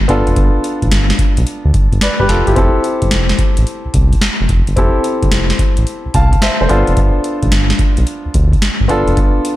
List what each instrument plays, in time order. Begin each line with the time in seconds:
0.00 analog synth bass G1
0.08 analog synth bass G1, grand piano B3 D4 F4 A4, kick, closed hi-hat
0.27 analog synth bass F1, closed hi-hat
0.36 analog synth bass G1, kick, closed hi-hat
0.64 closed hi-hat
0.82 analog synth bass A1, kick, closed hi-hat
0.91 analog synth bass G1, snare, closed hi-hat
1.10 snare
1.19 kick, closed hi-hat
1.37 analog synth bass B1, closed hi-hat
1.47 closed hi-hat
1.65 analog synth bass D2
1.74 analog synth bass G1, kick, closed hi-hat
1.92 analog synth bass G1, kick, closed hi-hat
2.01 grand piano B4 D5, snare, closed hi-hat
2.20 analog synth bass G1, grand piano G4 B4, kick
2.29 analog synth bass F1, grand piano F4 A4, snare, closed hi-hat
2.47 analog synth bass G1, grand piano E4 G4, closed hi-hat
2.55 analog synth bass F1, grand piano C4 E4 G4 A4, kick, closed hi-hat
2.84 closed hi-hat
3.02 analog synth bass G1, kick, closed hi-hat
3.11 analog synth bass F1, snare, closed hi-hat
3.29 snare
3.39 kick, closed hi-hat
3.57 analog synth bass A1, closed hi-hat
3.67 closed hi-hat
3.85 analog synth bass C2
3.94 analog synth bass C2, kick, closed hi-hat
4.12 kick, closed hi-hat
4.21 snare, closed hi-hat
4.41 analog synth bass F1
4.49 analog synth bass F1, kick, closed hi-hat
4.67 analog synth bass G1, closed hi-hat
4.76 analog synth bass F1, grand piano C4 E4 G4 A4, kick, closed hi-hat
5.04 closed hi-hat
5.23 analog synth bass G1, kick, closed hi-hat
5.31 analog synth bass F1, snare, closed hi-hat
5.50 snare
5.59 kick, closed hi-hat
5.77 analog synth bass A1, closed hi-hat
5.87 closed hi-hat
6.05 analog synth bass C2
6.14 analog synth bass C2, grand piano F5 A5, kick, closed hi-hat
6.32 kick, closed hi-hat
6.42 grand piano C5 E5, snare, closed hi-hat
6.61 analog synth bass F1, grand piano A4 C5
6.69 analog synth bass G1, grand piano B3 D4 F4 A4, closed hi-hat
6.87 analog synth bass F1, closed hi-hat
6.97 analog synth bass G1, kick, closed hi-hat
7.24 closed hi-hat
7.43 analog synth bass A1, kick, closed hi-hat
7.52 analog synth bass G1, snare, closed hi-hat
7.70 snare
7.79 kick, closed hi-hat
7.97 analog synth bass B1, closed hi-hat
8.07 closed hi-hat
8.25 analog synth bass D2
8.34 analog synth bass D2, kick, closed hi-hat
8.53 kick, closed hi-hat
8.62 snare, closed hi-hat
8.80 analog synth bass G1
8.88 analog synth bass G1, grand piano B3 D4 F4 A4, kick, closed hi-hat
9.07 analog synth bass F1, closed hi-hat
9.17 analog synth bass G1, kick, closed hi-hat
9.45 closed hi-hat